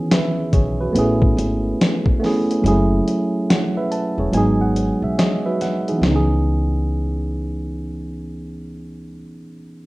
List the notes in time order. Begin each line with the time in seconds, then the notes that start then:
Already playing: D#3 E3 B3 C#4 G#4
0.11 B4 E5, snare, closed hi-hat
0.53 B1 G#4 C#5, kick, closed hi-hat
0.81 F#4 B4
0.93 A1 A3 B3 C#4, closed hi-hat
0.97 E4 G#4
1.22 kick
1.37 G#1, closed hi-hat
1.81 snare, closed hi-hat
2.06 kick
2.20 A3 B3 C#4
2.24 E4 G#4, snare, open hi-hat
2.51 closed hi-hat
2.62 F#1 F#3 G#3 C#4
2.66 A3 E4 G#4, closed hi-hat
3.08 closed hi-hat
3.50 C#5 F#5, snare, closed hi-hat
3.77 B4 E5
3.92 A5, closed hi-hat
4.18 E1 G#4 C#5
4.31 G#1 F#3 G#3 B3 G#5, closed hi-hat
4.36 D#4 G#4
4.61 F#5
4.76 closed hi-hat
5.02 B1 E5
5.18 G#4 C#5 D#5, snare, closed hi-hat
5.46 F#4 B4 E5
5.61 F#5, snare, closed hi-hat
5.88 E3 D#4 G#4, closed hi-hat
5.98 C#2 B3
6.03 C#4, snare
6.10 D#4
6.16 G#4